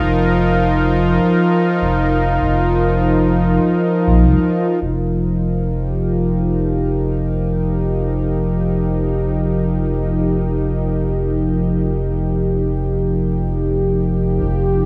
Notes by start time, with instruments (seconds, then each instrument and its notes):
Already playing: analog synth pad F3 D#4 F4 A#4
0.02 sub bass F1
1.82 sub bass F1
2.41 sub bass F1
4.07 sub bass A#1
4.22 sub bass C2
4.82 sub bass F1
5.73 analog synth pad G4
14.41 sub bass F1, analog synth pad F3
14.65 analog synth pad D#4